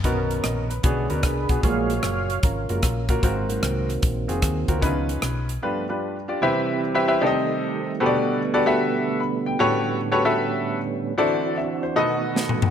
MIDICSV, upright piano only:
0, 0, Header, 1, 2, 480
1, 0, Start_track
1, 0, Key_signature, 6, "major"
1, 0, Tempo, 397351
1, 51, Time_signature, 4, 2, 24, 8
1, 7755, Key_signature, 1, "major"
1, 15346, End_track
2, 0, Start_track
2, 0, Title_t, "Upright piano"
2, 0, Program_c, 0, 0
2, 53, Note_on_c, 0, 59, 82
2, 55, Note_on_c, 0, 47, 70
2, 56, Note_on_c, 0, 63, 73
2, 58, Note_on_c, 0, 66, 72
2, 58, Note_on_c, 0, 70, 90
2, 532, Note_on_c, 0, 75, 55
2, 534, Note_off_c, 0, 70, 0
2, 800, Note_off_c, 0, 47, 0
2, 831, Note_off_c, 0, 75, 0
2, 843, Note_on_c, 0, 71, 59
2, 844, Note_off_c, 0, 59, 0
2, 845, Note_off_c, 0, 63, 0
2, 846, Note_off_c, 0, 66, 0
2, 1007, Note_on_c, 0, 59, 79
2, 1011, Note_on_c, 0, 62, 68
2, 1013, Note_on_c, 0, 68, 84
2, 1016, Note_on_c, 0, 47, 65
2, 1016, Note_on_c, 0, 66, 67
2, 1261, Note_off_c, 0, 59, 0
2, 1264, Note_off_c, 0, 62, 0
2, 1264, Note_off_c, 0, 68, 0
2, 1266, Note_off_c, 0, 66, 0
2, 1301, Note_off_c, 0, 71, 0
2, 1325, Note_on_c, 0, 59, 68
2, 1328, Note_on_c, 0, 61, 48
2, 1333, Note_on_c, 0, 66, 62
2, 1333, Note_on_c, 0, 70, 73
2, 1367, Note_off_c, 0, 61, 0
2, 1389, Note_on_c, 0, 62, 61
2, 1648, Note_off_c, 0, 59, 0
2, 1652, Note_off_c, 0, 66, 0
2, 1652, Note_off_c, 0, 70, 0
2, 1680, Note_off_c, 0, 62, 0
2, 1762, Note_off_c, 0, 47, 0
2, 1803, Note_on_c, 0, 59, 62
2, 1803, Note_on_c, 0, 62, 56
2, 1808, Note_on_c, 0, 66, 57
2, 1811, Note_on_c, 0, 68, 69
2, 1929, Note_off_c, 0, 59, 0
2, 1930, Note_off_c, 0, 62, 0
2, 1932, Note_off_c, 0, 66, 0
2, 1933, Note_off_c, 0, 68, 0
2, 1970, Note_on_c, 0, 58, 64
2, 1976, Note_on_c, 0, 46, 60
2, 1977, Note_on_c, 0, 65, 63
2, 1980, Note_on_c, 0, 66, 64
2, 1980, Note_on_c, 0, 68, 74
2, 2725, Note_off_c, 0, 46, 0
2, 2767, Note_off_c, 0, 58, 0
2, 2770, Note_off_c, 0, 65, 0
2, 2772, Note_off_c, 0, 66, 0
2, 2772, Note_off_c, 0, 68, 0
2, 3255, Note_on_c, 0, 58, 58
2, 3255, Note_on_c, 0, 65, 51
2, 3259, Note_on_c, 0, 66, 50
2, 3261, Note_on_c, 0, 70, 62
2, 3577, Note_off_c, 0, 58, 0
2, 3577, Note_off_c, 0, 65, 0
2, 3579, Note_off_c, 0, 66, 0
2, 3580, Note_off_c, 0, 70, 0
2, 3738, Note_on_c, 0, 58, 76
2, 3741, Note_on_c, 0, 66, 67
2, 3743, Note_on_c, 0, 65, 70
2, 3745, Note_on_c, 0, 70, 85
2, 3861, Note_off_c, 0, 58, 0
2, 3863, Note_off_c, 0, 65, 0
2, 3863, Note_off_c, 0, 66, 0
2, 3865, Note_off_c, 0, 70, 0
2, 3903, Note_on_c, 0, 60, 80
2, 3904, Note_on_c, 0, 65, 74
2, 3906, Note_on_c, 0, 44, 68
2, 3909, Note_on_c, 0, 66, 77
2, 3913, Note_on_c, 0, 70, 90
2, 4654, Note_off_c, 0, 44, 0
2, 4698, Note_off_c, 0, 60, 0
2, 4698, Note_off_c, 0, 65, 0
2, 4701, Note_off_c, 0, 66, 0
2, 4703, Note_off_c, 0, 70, 0
2, 5171, Note_on_c, 0, 60, 69
2, 5173, Note_on_c, 0, 65, 62
2, 5175, Note_on_c, 0, 66, 64
2, 5180, Note_on_c, 0, 68, 75
2, 5499, Note_off_c, 0, 60, 0
2, 5500, Note_off_c, 0, 65, 0
2, 5501, Note_off_c, 0, 66, 0
2, 5504, Note_off_c, 0, 68, 0
2, 5658, Note_on_c, 0, 60, 71
2, 5661, Note_on_c, 0, 66, 70
2, 5662, Note_on_c, 0, 70, 80
2, 5663, Note_on_c, 0, 65, 65
2, 5785, Note_off_c, 0, 60, 0
2, 5787, Note_off_c, 0, 66, 0
2, 5787, Note_off_c, 0, 70, 0
2, 5788, Note_off_c, 0, 65, 0
2, 5816, Note_on_c, 0, 61, 84
2, 5819, Note_on_c, 0, 49, 73
2, 5824, Note_on_c, 0, 63, 72
2, 5824, Note_on_c, 0, 71, 95
2, 5826, Note_on_c, 0, 64, 63
2, 5880, Note_on_c, 0, 65, 72
2, 5904, Note_off_c, 0, 64, 0
2, 6574, Note_off_c, 0, 49, 0
2, 6618, Note_off_c, 0, 61, 0
2, 6621, Note_off_c, 0, 63, 0
2, 6622, Note_off_c, 0, 71, 0
2, 6650, Note_off_c, 0, 65, 0
2, 6795, Note_on_c, 0, 62, 72
2, 6796, Note_on_c, 0, 65, 72
2, 6798, Note_on_c, 0, 43, 61
2, 6798, Note_on_c, 0, 67, 66
2, 6801, Note_on_c, 0, 71, 86
2, 7047, Note_off_c, 0, 62, 0
2, 7047, Note_off_c, 0, 65, 0
2, 7048, Note_off_c, 0, 67, 0
2, 7050, Note_off_c, 0, 71, 0
2, 7114, Note_on_c, 0, 62, 65
2, 7118, Note_on_c, 0, 65, 58
2, 7122, Note_on_c, 0, 67, 59
2, 7122, Note_on_c, 0, 71, 72
2, 7433, Note_off_c, 0, 62, 0
2, 7435, Note_off_c, 0, 65, 0
2, 7437, Note_off_c, 0, 67, 0
2, 7437, Note_off_c, 0, 71, 0
2, 7544, Note_off_c, 0, 43, 0
2, 7588, Note_on_c, 0, 62, 72
2, 7592, Note_on_c, 0, 65, 63
2, 7596, Note_on_c, 0, 67, 63
2, 7597, Note_on_c, 0, 74, 81
2, 7712, Note_off_c, 0, 62, 0
2, 7715, Note_off_c, 0, 65, 0
2, 7716, Note_off_c, 0, 67, 0
2, 7717, Note_off_c, 0, 74, 0
2, 7754, Note_on_c, 0, 64, 95
2, 7759, Note_on_c, 0, 67, 83
2, 7764, Note_on_c, 0, 48, 82
2, 7764, Note_on_c, 0, 72, 82
2, 7765, Note_on_c, 0, 71, 85
2, 7765, Note_on_c, 0, 76, 99
2, 8213, Note_off_c, 0, 64, 0
2, 8215, Note_off_c, 0, 67, 0
2, 8218, Note_off_c, 0, 71, 0
2, 8218, Note_off_c, 0, 72, 0
2, 8218, Note_off_c, 0, 76, 0
2, 8389, Note_on_c, 0, 64, 88
2, 8392, Note_on_c, 0, 71, 80
2, 8397, Note_on_c, 0, 72, 78
2, 8398, Note_on_c, 0, 67, 80
2, 8399, Note_on_c, 0, 76, 97
2, 8506, Note_off_c, 0, 48, 0
2, 8508, Note_off_c, 0, 64, 0
2, 8510, Note_off_c, 0, 71, 0
2, 8512, Note_off_c, 0, 72, 0
2, 8513, Note_off_c, 0, 67, 0
2, 8513, Note_off_c, 0, 76, 0
2, 8548, Note_on_c, 0, 64, 87
2, 8552, Note_on_c, 0, 67, 88
2, 8553, Note_on_c, 0, 71, 84
2, 8556, Note_on_c, 0, 72, 83
2, 8557, Note_on_c, 0, 76, 97
2, 8698, Note_off_c, 0, 67, 0
2, 8700, Note_off_c, 0, 72, 0
2, 8712, Note_on_c, 0, 63, 96
2, 8714, Note_off_c, 0, 64, 0
2, 8716, Note_off_c, 0, 71, 0
2, 8716, Note_on_c, 0, 48, 77
2, 8716, Note_on_c, 0, 67, 86
2, 8718, Note_off_c, 0, 76, 0
2, 8718, Note_on_c, 0, 72, 87
2, 8719, Note_on_c, 0, 69, 85
2, 8724, Note_on_c, 0, 74, 80
2, 8776, Note_on_c, 0, 75, 101
2, 8795, Note_off_c, 0, 74, 0
2, 9460, Note_off_c, 0, 48, 0
2, 9539, Note_off_c, 0, 63, 0
2, 9541, Note_off_c, 0, 67, 0
2, 9542, Note_off_c, 0, 72, 0
2, 9543, Note_off_c, 0, 69, 0
2, 9571, Note_off_c, 0, 75, 0
2, 9667, Note_on_c, 0, 66, 92
2, 9669, Note_on_c, 0, 67, 88
2, 9672, Note_on_c, 0, 69, 83
2, 9672, Note_on_c, 0, 71, 89
2, 9673, Note_on_c, 0, 47, 83
2, 9673, Note_on_c, 0, 72, 80
2, 9737, Note_on_c, 0, 74, 102
2, 9748, Note_off_c, 0, 72, 0
2, 10126, Note_off_c, 0, 66, 0
2, 10128, Note_off_c, 0, 67, 0
2, 10129, Note_off_c, 0, 69, 0
2, 10129, Note_off_c, 0, 71, 0
2, 10162, Note_off_c, 0, 74, 0
2, 10313, Note_on_c, 0, 66, 87
2, 10313, Note_on_c, 0, 67, 78
2, 10315, Note_on_c, 0, 69, 87
2, 10315, Note_on_c, 0, 71, 79
2, 10317, Note_on_c, 0, 74, 104
2, 10417, Note_off_c, 0, 47, 0
2, 10427, Note_off_c, 0, 66, 0
2, 10427, Note_off_c, 0, 67, 0
2, 10429, Note_off_c, 0, 69, 0
2, 10429, Note_off_c, 0, 71, 0
2, 10430, Note_off_c, 0, 74, 0
2, 10463, Note_on_c, 0, 66, 96
2, 10467, Note_on_c, 0, 67, 85
2, 10467, Note_on_c, 0, 69, 86
2, 10467, Note_on_c, 0, 71, 84
2, 10473, Note_on_c, 0, 76, 103
2, 11105, Note_off_c, 0, 66, 0
2, 11107, Note_off_c, 0, 67, 0
2, 11107, Note_off_c, 0, 69, 0
2, 11107, Note_off_c, 0, 71, 0
2, 11110, Note_off_c, 0, 76, 0
2, 11113, Note_on_c, 0, 83, 70
2, 11408, Note_off_c, 0, 83, 0
2, 11431, Note_on_c, 0, 79, 72
2, 11587, Note_on_c, 0, 66, 96
2, 11593, Note_on_c, 0, 67, 85
2, 11595, Note_on_c, 0, 69, 90
2, 11596, Note_on_c, 0, 45, 78
2, 11598, Note_on_c, 0, 71, 89
2, 11598, Note_on_c, 0, 73, 109
2, 11881, Note_off_c, 0, 79, 0
2, 12043, Note_off_c, 0, 66, 0
2, 12046, Note_off_c, 0, 67, 0
2, 12047, Note_off_c, 0, 69, 0
2, 12048, Note_off_c, 0, 71, 0
2, 12048, Note_off_c, 0, 73, 0
2, 12220, Note_on_c, 0, 66, 92
2, 12224, Note_on_c, 0, 67, 81
2, 12225, Note_on_c, 0, 69, 87
2, 12226, Note_on_c, 0, 73, 98
2, 12227, Note_on_c, 0, 71, 84
2, 12335, Note_off_c, 0, 45, 0
2, 12337, Note_off_c, 0, 66, 0
2, 12340, Note_off_c, 0, 67, 0
2, 12340, Note_off_c, 0, 69, 0
2, 12340, Note_off_c, 0, 73, 0
2, 12341, Note_off_c, 0, 71, 0
2, 12379, Note_on_c, 0, 66, 91
2, 12381, Note_on_c, 0, 67, 83
2, 12384, Note_on_c, 0, 69, 89
2, 12386, Note_on_c, 0, 76, 99
2, 12387, Note_on_c, 0, 71, 90
2, 13019, Note_off_c, 0, 66, 0
2, 13020, Note_off_c, 0, 67, 0
2, 13022, Note_off_c, 0, 69, 0
2, 13023, Note_off_c, 0, 71, 0
2, 13023, Note_off_c, 0, 76, 0
2, 13500, Note_on_c, 0, 64, 90
2, 13501, Note_on_c, 0, 66, 86
2, 13504, Note_on_c, 0, 50, 83
2, 13505, Note_on_c, 0, 69, 86
2, 13507, Note_on_c, 0, 72, 86
2, 13510, Note_on_c, 0, 74, 107
2, 13956, Note_off_c, 0, 64, 0
2, 13956, Note_off_c, 0, 66, 0
2, 13958, Note_off_c, 0, 69, 0
2, 13960, Note_off_c, 0, 72, 0
2, 13961, Note_off_c, 0, 74, 0
2, 13983, Note_on_c, 0, 76, 67
2, 14245, Note_off_c, 0, 50, 0
2, 14278, Note_off_c, 0, 76, 0
2, 14290, Note_on_c, 0, 72, 69
2, 14446, Note_on_c, 0, 63, 93
2, 14447, Note_on_c, 0, 66, 82
2, 14448, Note_on_c, 0, 69, 83
2, 14450, Note_on_c, 0, 47, 75
2, 14451, Note_on_c, 0, 75, 106
2, 14453, Note_on_c, 0, 71, 85
2, 14744, Note_off_c, 0, 72, 0
2, 15196, Note_off_c, 0, 47, 0
2, 15275, Note_off_c, 0, 63, 0
2, 15276, Note_off_c, 0, 66, 0
2, 15276, Note_off_c, 0, 69, 0
2, 15278, Note_off_c, 0, 75, 0
2, 15279, Note_off_c, 0, 71, 0
2, 15346, End_track
0, 0, End_of_file